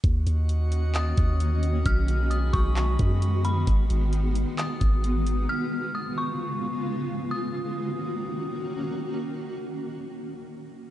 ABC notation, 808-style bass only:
X:1
M:4/4
L:1/16
Q:1/4=132
K:Ebm
V:1 name="808-style bass" clef=bass
E,,2 E,,8 E,,6 | =B,,,6 B,,,4 ^F,,6 | A,,,2 A,,,4- A,,, z3 A,,,6 | z16 |
z16 | z16 |]